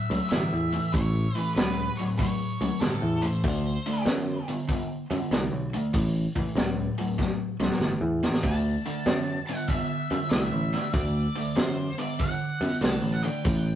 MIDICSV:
0, 0, Header, 1, 5, 480
1, 0, Start_track
1, 0, Tempo, 625652
1, 717, Time_signature, 4, 2, 24, 8
1, 10552, End_track
2, 0, Start_track
2, 0, Title_t, "Lead electric guitar"
2, 0, Program_c, 0, 29
2, 0, Note_on_c, 0, 76, 88
2, 219, Note_off_c, 0, 76, 0
2, 229, Note_on_c, 0, 76, 84
2, 708, Note_on_c, 0, 73, 91
2, 728, Note_off_c, 0, 76, 0
2, 1054, Note_off_c, 0, 73, 0
2, 1054, Note_on_c, 0, 71, 91
2, 1162, Note_off_c, 0, 71, 0
2, 1190, Note_on_c, 0, 71, 79
2, 1511, Note_off_c, 0, 71, 0
2, 1514, Note_on_c, 0, 73, 85
2, 1557, Note_off_c, 0, 73, 0
2, 1676, Note_on_c, 0, 73, 81
2, 2148, Note_on_c, 0, 69, 77
2, 2170, Note_off_c, 0, 73, 0
2, 2469, Note_on_c, 0, 72, 65
2, 2483, Note_off_c, 0, 69, 0
2, 3080, Note_off_c, 0, 72, 0
2, 6469, Note_on_c, 0, 81, 95
2, 7265, Note_off_c, 0, 81, 0
2, 7268, Note_on_c, 0, 78, 87
2, 7424, Note_on_c, 0, 76, 91
2, 7433, Note_off_c, 0, 78, 0
2, 7898, Note_off_c, 0, 76, 0
2, 7908, Note_on_c, 0, 76, 80
2, 8391, Note_off_c, 0, 76, 0
2, 8394, Note_on_c, 0, 74, 86
2, 8870, Note_on_c, 0, 72, 81
2, 8888, Note_off_c, 0, 74, 0
2, 9199, Note_on_c, 0, 74, 80
2, 9204, Note_off_c, 0, 72, 0
2, 9345, Note_off_c, 0, 74, 0
2, 9360, Note_on_c, 0, 78, 87
2, 9835, Note_off_c, 0, 78, 0
2, 9838, Note_on_c, 0, 81, 90
2, 10076, Note_off_c, 0, 81, 0
2, 10079, Note_on_c, 0, 78, 58
2, 10152, Note_off_c, 0, 78, 0
2, 10155, Note_on_c, 0, 79, 78
2, 10552, Note_off_c, 0, 79, 0
2, 10552, End_track
3, 0, Start_track
3, 0, Title_t, "Overdriven electric guitar"
3, 0, Program_c, 1, 29
3, 86, Note_on_c, 1, 45, 64
3, 91, Note_on_c, 1, 54, 72
3, 225, Note_off_c, 1, 45, 0
3, 227, Note_off_c, 1, 54, 0
3, 244, Note_on_c, 1, 45, 72
3, 246, Note_on_c, 1, 52, 80
3, 530, Note_off_c, 1, 45, 0
3, 531, Note_off_c, 1, 52, 0
3, 561, Note_on_c, 1, 45, 66
3, 566, Note_on_c, 1, 52, 87
3, 703, Note_off_c, 1, 45, 0
3, 705, Note_off_c, 1, 52, 0
3, 726, Note_on_c, 1, 45, 79
3, 730, Note_on_c, 1, 52, 80
3, 1011, Note_off_c, 1, 45, 0
3, 1013, Note_off_c, 1, 52, 0
3, 1042, Note_on_c, 1, 45, 65
3, 1045, Note_on_c, 1, 52, 80
3, 1183, Note_off_c, 1, 45, 0
3, 1184, Note_off_c, 1, 52, 0
3, 1210, Note_on_c, 1, 45, 74
3, 1213, Note_on_c, 1, 54, 86
3, 1493, Note_off_c, 1, 45, 0
3, 1494, Note_off_c, 1, 54, 0
3, 1529, Note_on_c, 1, 45, 76
3, 1530, Note_on_c, 1, 54, 78
3, 1667, Note_off_c, 1, 45, 0
3, 1667, Note_off_c, 1, 54, 0
3, 1686, Note_on_c, 1, 45, 73
3, 1688, Note_on_c, 1, 54, 79
3, 1971, Note_off_c, 1, 45, 0
3, 1972, Note_off_c, 1, 54, 0
3, 2004, Note_on_c, 1, 45, 65
3, 2008, Note_on_c, 1, 54, 74
3, 2144, Note_off_c, 1, 45, 0
3, 2146, Note_off_c, 1, 54, 0
3, 2160, Note_on_c, 1, 45, 64
3, 2163, Note_on_c, 1, 52, 73
3, 2447, Note_off_c, 1, 45, 0
3, 2449, Note_off_c, 1, 52, 0
3, 2473, Note_on_c, 1, 45, 74
3, 2478, Note_on_c, 1, 52, 85
3, 2618, Note_off_c, 1, 45, 0
3, 2620, Note_off_c, 1, 52, 0
3, 2638, Note_on_c, 1, 50, 73
3, 2642, Note_on_c, 1, 57, 83
3, 2926, Note_off_c, 1, 50, 0
3, 2928, Note_off_c, 1, 57, 0
3, 2962, Note_on_c, 1, 50, 72
3, 2967, Note_on_c, 1, 57, 78
3, 3102, Note_off_c, 1, 50, 0
3, 3104, Note_off_c, 1, 57, 0
3, 3118, Note_on_c, 1, 50, 71
3, 3122, Note_on_c, 1, 59, 86
3, 3405, Note_off_c, 1, 50, 0
3, 3407, Note_off_c, 1, 59, 0
3, 3443, Note_on_c, 1, 50, 75
3, 3445, Note_on_c, 1, 59, 72
3, 3582, Note_off_c, 1, 50, 0
3, 3583, Note_off_c, 1, 59, 0
3, 3596, Note_on_c, 1, 50, 77
3, 3604, Note_on_c, 1, 59, 83
3, 3884, Note_off_c, 1, 50, 0
3, 3887, Note_off_c, 1, 59, 0
3, 3921, Note_on_c, 1, 50, 73
3, 3926, Note_on_c, 1, 59, 86
3, 4060, Note_off_c, 1, 50, 0
3, 4063, Note_off_c, 1, 59, 0
3, 4079, Note_on_c, 1, 50, 70
3, 4084, Note_on_c, 1, 57, 82
3, 4364, Note_off_c, 1, 50, 0
3, 4367, Note_off_c, 1, 57, 0
3, 4399, Note_on_c, 1, 50, 73
3, 4406, Note_on_c, 1, 57, 82
3, 4539, Note_off_c, 1, 50, 0
3, 4542, Note_off_c, 1, 57, 0
3, 4555, Note_on_c, 1, 45, 75
3, 4557, Note_on_c, 1, 52, 83
3, 4842, Note_off_c, 1, 45, 0
3, 4843, Note_off_c, 1, 52, 0
3, 4879, Note_on_c, 1, 45, 70
3, 4881, Note_on_c, 1, 52, 84
3, 5018, Note_off_c, 1, 45, 0
3, 5019, Note_off_c, 1, 52, 0
3, 5037, Note_on_c, 1, 45, 75
3, 5041, Note_on_c, 1, 54, 90
3, 5323, Note_off_c, 1, 45, 0
3, 5325, Note_off_c, 1, 54, 0
3, 5356, Note_on_c, 1, 45, 72
3, 5357, Note_on_c, 1, 54, 77
3, 5496, Note_off_c, 1, 45, 0
3, 5497, Note_off_c, 1, 54, 0
3, 5510, Note_on_c, 1, 45, 71
3, 5513, Note_on_c, 1, 54, 81
3, 5799, Note_off_c, 1, 45, 0
3, 5800, Note_off_c, 1, 54, 0
3, 5831, Note_on_c, 1, 45, 63
3, 5836, Note_on_c, 1, 54, 79
3, 5974, Note_off_c, 1, 45, 0
3, 5976, Note_off_c, 1, 54, 0
3, 6004, Note_on_c, 1, 45, 74
3, 6006, Note_on_c, 1, 52, 81
3, 6286, Note_off_c, 1, 45, 0
3, 6287, Note_off_c, 1, 52, 0
3, 6319, Note_on_c, 1, 45, 78
3, 6324, Note_on_c, 1, 52, 72
3, 6458, Note_off_c, 1, 45, 0
3, 6460, Note_off_c, 1, 52, 0
3, 6476, Note_on_c, 1, 50, 84
3, 6478, Note_on_c, 1, 57, 95
3, 6762, Note_off_c, 1, 50, 0
3, 6763, Note_off_c, 1, 57, 0
3, 6796, Note_on_c, 1, 50, 82
3, 6801, Note_on_c, 1, 57, 91
3, 6936, Note_off_c, 1, 50, 0
3, 6938, Note_off_c, 1, 57, 0
3, 6957, Note_on_c, 1, 50, 75
3, 6961, Note_on_c, 1, 59, 75
3, 7243, Note_off_c, 1, 50, 0
3, 7245, Note_off_c, 1, 59, 0
3, 7280, Note_on_c, 1, 50, 71
3, 7282, Note_on_c, 1, 59, 80
3, 7419, Note_off_c, 1, 50, 0
3, 7419, Note_off_c, 1, 59, 0
3, 7438, Note_on_c, 1, 50, 76
3, 7439, Note_on_c, 1, 59, 82
3, 7723, Note_off_c, 1, 50, 0
3, 7724, Note_off_c, 1, 59, 0
3, 7760, Note_on_c, 1, 50, 67
3, 7761, Note_on_c, 1, 59, 69
3, 7899, Note_off_c, 1, 50, 0
3, 7899, Note_off_c, 1, 59, 0
3, 7915, Note_on_c, 1, 50, 70
3, 7920, Note_on_c, 1, 57, 82
3, 8202, Note_off_c, 1, 50, 0
3, 8205, Note_off_c, 1, 57, 0
3, 8234, Note_on_c, 1, 50, 80
3, 8239, Note_on_c, 1, 57, 85
3, 8376, Note_off_c, 1, 50, 0
3, 8379, Note_off_c, 1, 57, 0
3, 8389, Note_on_c, 1, 50, 77
3, 8391, Note_on_c, 1, 57, 84
3, 8680, Note_off_c, 1, 50, 0
3, 8681, Note_off_c, 1, 57, 0
3, 8712, Note_on_c, 1, 50, 76
3, 8715, Note_on_c, 1, 57, 76
3, 8856, Note_off_c, 1, 50, 0
3, 8857, Note_off_c, 1, 57, 0
3, 8866, Note_on_c, 1, 50, 69
3, 8871, Note_on_c, 1, 59, 83
3, 9160, Note_off_c, 1, 50, 0
3, 9162, Note_off_c, 1, 59, 0
3, 9192, Note_on_c, 1, 50, 73
3, 9195, Note_on_c, 1, 59, 81
3, 9337, Note_off_c, 1, 50, 0
3, 9338, Note_off_c, 1, 59, 0
3, 9352, Note_on_c, 1, 50, 81
3, 9354, Note_on_c, 1, 59, 79
3, 9644, Note_off_c, 1, 50, 0
3, 9645, Note_off_c, 1, 59, 0
3, 9673, Note_on_c, 1, 50, 73
3, 9676, Note_on_c, 1, 59, 80
3, 9819, Note_off_c, 1, 50, 0
3, 9820, Note_off_c, 1, 59, 0
3, 9834, Note_on_c, 1, 50, 64
3, 9838, Note_on_c, 1, 57, 78
3, 10126, Note_off_c, 1, 50, 0
3, 10128, Note_off_c, 1, 57, 0
3, 10159, Note_on_c, 1, 50, 75
3, 10161, Note_on_c, 1, 57, 89
3, 10303, Note_off_c, 1, 50, 0
3, 10304, Note_off_c, 1, 57, 0
3, 10318, Note_on_c, 1, 45, 80
3, 10321, Note_on_c, 1, 52, 85
3, 10552, Note_off_c, 1, 45, 0
3, 10552, Note_off_c, 1, 52, 0
3, 10552, End_track
4, 0, Start_track
4, 0, Title_t, "Picked electric bass"
4, 0, Program_c, 2, 34
4, 77, Note_on_c, 2, 37, 76
4, 138, Note_off_c, 2, 37, 0
4, 243, Note_on_c, 2, 31, 97
4, 364, Note_off_c, 2, 31, 0
4, 404, Note_on_c, 2, 40, 80
4, 586, Note_off_c, 2, 40, 0
4, 719, Note_on_c, 2, 33, 91
4, 965, Note_off_c, 2, 33, 0
4, 1199, Note_on_c, 2, 37, 74
4, 1445, Note_off_c, 2, 37, 0
4, 2001, Note_on_c, 2, 37, 84
4, 2061, Note_off_c, 2, 37, 0
4, 2157, Note_on_c, 2, 31, 95
4, 2280, Note_off_c, 2, 31, 0
4, 2318, Note_on_c, 2, 40, 85
4, 2502, Note_off_c, 2, 40, 0
4, 2640, Note_on_c, 2, 38, 89
4, 2885, Note_off_c, 2, 38, 0
4, 3111, Note_on_c, 2, 42, 80
4, 3359, Note_off_c, 2, 42, 0
4, 3917, Note_on_c, 2, 42, 81
4, 3977, Note_off_c, 2, 42, 0
4, 4076, Note_on_c, 2, 36, 92
4, 4198, Note_off_c, 2, 36, 0
4, 4233, Note_on_c, 2, 35, 79
4, 4417, Note_off_c, 2, 35, 0
4, 4559, Note_on_c, 2, 33, 90
4, 4803, Note_off_c, 2, 33, 0
4, 5029, Note_on_c, 2, 37, 81
4, 5276, Note_off_c, 2, 37, 0
4, 5830, Note_on_c, 2, 37, 76
4, 5891, Note_off_c, 2, 37, 0
4, 5983, Note_on_c, 2, 31, 94
4, 6109, Note_off_c, 2, 31, 0
4, 6146, Note_on_c, 2, 40, 82
4, 6332, Note_off_c, 2, 40, 0
4, 6471, Note_on_c, 2, 38, 90
4, 6717, Note_off_c, 2, 38, 0
4, 6951, Note_on_c, 2, 42, 81
4, 7197, Note_off_c, 2, 42, 0
4, 7756, Note_on_c, 2, 42, 86
4, 7815, Note_off_c, 2, 42, 0
4, 7915, Note_on_c, 2, 36, 96
4, 8037, Note_off_c, 2, 36, 0
4, 8075, Note_on_c, 2, 33, 78
4, 8258, Note_off_c, 2, 33, 0
4, 8391, Note_on_c, 2, 38, 85
4, 8638, Note_off_c, 2, 38, 0
4, 8873, Note_on_c, 2, 42, 84
4, 9121, Note_off_c, 2, 42, 0
4, 9673, Note_on_c, 2, 42, 80
4, 9736, Note_off_c, 2, 42, 0
4, 9830, Note_on_c, 2, 36, 102
4, 9956, Note_off_c, 2, 36, 0
4, 9992, Note_on_c, 2, 33, 78
4, 10180, Note_off_c, 2, 33, 0
4, 10319, Note_on_c, 2, 33, 94
4, 10552, Note_off_c, 2, 33, 0
4, 10552, End_track
5, 0, Start_track
5, 0, Title_t, "Drums"
5, 81, Note_on_c, 9, 46, 54
5, 158, Note_off_c, 9, 46, 0
5, 235, Note_on_c, 9, 46, 64
5, 241, Note_on_c, 9, 38, 92
5, 312, Note_off_c, 9, 46, 0
5, 318, Note_off_c, 9, 38, 0
5, 565, Note_on_c, 9, 46, 50
5, 642, Note_off_c, 9, 46, 0
5, 720, Note_on_c, 9, 36, 116
5, 722, Note_on_c, 9, 46, 69
5, 797, Note_off_c, 9, 36, 0
5, 799, Note_off_c, 9, 46, 0
5, 1044, Note_on_c, 9, 46, 50
5, 1121, Note_off_c, 9, 46, 0
5, 1203, Note_on_c, 9, 46, 68
5, 1209, Note_on_c, 9, 38, 108
5, 1280, Note_off_c, 9, 46, 0
5, 1286, Note_off_c, 9, 38, 0
5, 1524, Note_on_c, 9, 46, 45
5, 1601, Note_off_c, 9, 46, 0
5, 1680, Note_on_c, 9, 36, 102
5, 1682, Note_on_c, 9, 46, 63
5, 1757, Note_off_c, 9, 36, 0
5, 1759, Note_off_c, 9, 46, 0
5, 2006, Note_on_c, 9, 46, 46
5, 2082, Note_off_c, 9, 46, 0
5, 2156, Note_on_c, 9, 46, 54
5, 2162, Note_on_c, 9, 38, 91
5, 2232, Note_off_c, 9, 46, 0
5, 2239, Note_off_c, 9, 38, 0
5, 2480, Note_on_c, 9, 46, 46
5, 2557, Note_off_c, 9, 46, 0
5, 2638, Note_on_c, 9, 36, 114
5, 2640, Note_on_c, 9, 46, 70
5, 2715, Note_off_c, 9, 36, 0
5, 2716, Note_off_c, 9, 46, 0
5, 2961, Note_on_c, 9, 46, 46
5, 3038, Note_off_c, 9, 46, 0
5, 3114, Note_on_c, 9, 46, 59
5, 3120, Note_on_c, 9, 38, 100
5, 3190, Note_off_c, 9, 46, 0
5, 3196, Note_off_c, 9, 38, 0
5, 3437, Note_on_c, 9, 46, 47
5, 3514, Note_off_c, 9, 46, 0
5, 3595, Note_on_c, 9, 46, 66
5, 3596, Note_on_c, 9, 36, 101
5, 3672, Note_off_c, 9, 46, 0
5, 3673, Note_off_c, 9, 36, 0
5, 3921, Note_on_c, 9, 46, 51
5, 3998, Note_off_c, 9, 46, 0
5, 4080, Note_on_c, 9, 46, 62
5, 4086, Note_on_c, 9, 38, 91
5, 4157, Note_off_c, 9, 46, 0
5, 4163, Note_off_c, 9, 38, 0
5, 4402, Note_on_c, 9, 46, 49
5, 4479, Note_off_c, 9, 46, 0
5, 4556, Note_on_c, 9, 36, 112
5, 4560, Note_on_c, 9, 46, 74
5, 4633, Note_off_c, 9, 36, 0
5, 4637, Note_off_c, 9, 46, 0
5, 4878, Note_on_c, 9, 36, 78
5, 4881, Note_on_c, 9, 46, 51
5, 4954, Note_off_c, 9, 36, 0
5, 4958, Note_off_c, 9, 46, 0
5, 5038, Note_on_c, 9, 46, 60
5, 5044, Note_on_c, 9, 38, 104
5, 5115, Note_off_c, 9, 46, 0
5, 5121, Note_off_c, 9, 38, 0
5, 5355, Note_on_c, 9, 46, 49
5, 5431, Note_off_c, 9, 46, 0
5, 5514, Note_on_c, 9, 36, 97
5, 5523, Note_on_c, 9, 38, 53
5, 5591, Note_off_c, 9, 36, 0
5, 5600, Note_off_c, 9, 38, 0
5, 5845, Note_on_c, 9, 38, 68
5, 5919, Note_off_c, 9, 38, 0
5, 5919, Note_on_c, 9, 38, 60
5, 5994, Note_off_c, 9, 38, 0
5, 5994, Note_on_c, 9, 38, 67
5, 6070, Note_off_c, 9, 38, 0
5, 6316, Note_on_c, 9, 38, 80
5, 6393, Note_off_c, 9, 38, 0
5, 6397, Note_on_c, 9, 38, 75
5, 6465, Note_on_c, 9, 46, 64
5, 6471, Note_on_c, 9, 36, 108
5, 6474, Note_off_c, 9, 38, 0
5, 6542, Note_off_c, 9, 46, 0
5, 6548, Note_off_c, 9, 36, 0
5, 6794, Note_on_c, 9, 46, 49
5, 6871, Note_off_c, 9, 46, 0
5, 6948, Note_on_c, 9, 46, 58
5, 6954, Note_on_c, 9, 38, 107
5, 7025, Note_off_c, 9, 46, 0
5, 7031, Note_off_c, 9, 38, 0
5, 7274, Note_on_c, 9, 46, 49
5, 7351, Note_off_c, 9, 46, 0
5, 7425, Note_on_c, 9, 46, 57
5, 7430, Note_on_c, 9, 36, 99
5, 7502, Note_off_c, 9, 46, 0
5, 7507, Note_off_c, 9, 36, 0
5, 7749, Note_on_c, 9, 46, 47
5, 7826, Note_off_c, 9, 46, 0
5, 7905, Note_on_c, 9, 46, 62
5, 7911, Note_on_c, 9, 38, 97
5, 7982, Note_off_c, 9, 46, 0
5, 7988, Note_off_c, 9, 38, 0
5, 8228, Note_on_c, 9, 46, 51
5, 8234, Note_on_c, 9, 38, 29
5, 8305, Note_off_c, 9, 46, 0
5, 8311, Note_off_c, 9, 38, 0
5, 8389, Note_on_c, 9, 46, 75
5, 8392, Note_on_c, 9, 36, 116
5, 8466, Note_off_c, 9, 46, 0
5, 8469, Note_off_c, 9, 36, 0
5, 8714, Note_on_c, 9, 46, 50
5, 8791, Note_off_c, 9, 46, 0
5, 8875, Note_on_c, 9, 46, 70
5, 8881, Note_on_c, 9, 38, 103
5, 8951, Note_off_c, 9, 46, 0
5, 8957, Note_off_c, 9, 38, 0
5, 9198, Note_on_c, 9, 46, 51
5, 9275, Note_off_c, 9, 46, 0
5, 9357, Note_on_c, 9, 36, 96
5, 9362, Note_on_c, 9, 46, 62
5, 9434, Note_off_c, 9, 36, 0
5, 9439, Note_off_c, 9, 46, 0
5, 9684, Note_on_c, 9, 46, 47
5, 9761, Note_off_c, 9, 46, 0
5, 9841, Note_on_c, 9, 46, 59
5, 9847, Note_on_c, 9, 38, 101
5, 9917, Note_off_c, 9, 46, 0
5, 9923, Note_off_c, 9, 38, 0
5, 10163, Note_on_c, 9, 46, 45
5, 10239, Note_off_c, 9, 46, 0
5, 10319, Note_on_c, 9, 36, 116
5, 10322, Note_on_c, 9, 46, 67
5, 10396, Note_off_c, 9, 36, 0
5, 10398, Note_off_c, 9, 46, 0
5, 10552, End_track
0, 0, End_of_file